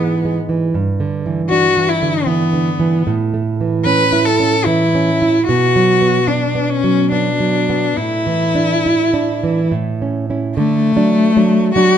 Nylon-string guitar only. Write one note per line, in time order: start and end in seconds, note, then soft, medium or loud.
0.00 0.70 G#2 medium
0.00 0.39 E3 soft
0.00 0.14 G#3 medium
0.25 0.64 G#3 soft
0.49 0.74 E3 soft
0.74 3.02 G2 medium
1.00 1.41 D3 soft
1.26 1.67 E3 soft
1.51 1.92 D4 medium
1.77 2.17 E3 soft
2.02 2.43 D3 medium
2.27 2.68 E3 soft
2.53 2.95 D3 soft
2.79 3.06 E3 medium
3.07 5.45 A2 medium
3.34 3.76 A3 soft
3.61 4.03 E3 medium
3.86 4.29 C#4 medium
4.13 4.55 E4 medium
4.40 4.83 C#4 medium
4.67 5.10 E3 medium
4.95 5.38 C#4 medium
5.22 5.49 E4 medium
5.49 7.94 B2 medium
5.76 6.18 F#3 medium
6.01 6.45 B3 soft
6.28 6.73 D4 medium
6.55 7.01 B3 soft
6.84 7.29 F#3 soft
7.12 7.57 B3 soft
7.40 7.86 F#3 soft
7.70 7.98 B3 medium
7.97 9.67 A2 medium
8.27 8.73 E3 soft
8.55 9.02 D4 soft
8.86 9.32 E4 medium
9.14 9.60 D4 soft
9.43 9.72 E3 soft
9.72 10.54 A2 medium
10.02 10.29 C#4 soft
10.30 10.54 C#4 soft
10.30 10.54 E4 medium
10.57 10.95 D3 medium
10.96 11.32 F#3 soft
10.96 11.32 D4 medium
11.37 11.71 F#3 medium
11.37 11.72 D4 medium
11.76 11.98 F#3 medium
11.76 11.98 D4 medium